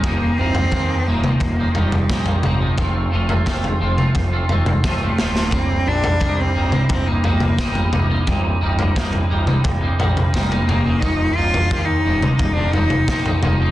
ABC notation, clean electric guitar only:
X:1
M:4/4
L:1/16
Q:1/4=87
K:Cm
V:1 name="Clean electric guitar" clef=bass
[E,,B,,E,F,B,E]2 [E,F,B,E] [E,F,B,E] [E,,B,,E,F,B,E]2 [E,F,B,E] [E,F,B,E]2 [E,F,B,E] [E,F,B,E]2 [E,,B,,E,F,B,E] [E,F,B,E] [E,F,B,E] [E,F,B,E] | [F,,C,F,=A,CF]2 [F,A,CF] [F,A,CF] [F,,C,F,A,CF]2 [F,A,CF] [F,A,CF]2 [F,A,CF] [F,A,CF]2 [F,,C,F,A,CF] [F,A,CF] [F,A,CF] [F,A,CF] | [C,,G,,C,G,B,]2 [C,G,B,] [C,G,B,] [C,,G,,C,G,B,E]2 [C,G,B,E] [C,G,B,E]2 [C,G,B,E] [C,G,B,E]2 [C,,G,,C,G,B,E] [C,G,B,E] [C,G,B,E] [C,G,B,E] | [C,,G,,C,G,B,E]2 [C,G,B,E] [C,G,B,E] [C,,G,,C,G,B,E]2 [C,G,B,E] [C,G,B,E]2 [C,G,B,E] [C,G,B,E]2 [C,,G,,C,G,B,E] [C,G,B,E] [E,,B,,E,F,B,E] [E,F,B,E] |
[E,,B,,E,F,B,E]2 [E,F,B,E] [E,F,B,E] [E,,B,,E,F,B,E]2 [E,F,B,E] [E,F,B,E]2 [E,F,B,E] [E,F,B,E]2 [E,,B,,E,F,B,E] [E,F,B,E] [E,F,B,E] [E,F,B,E] |]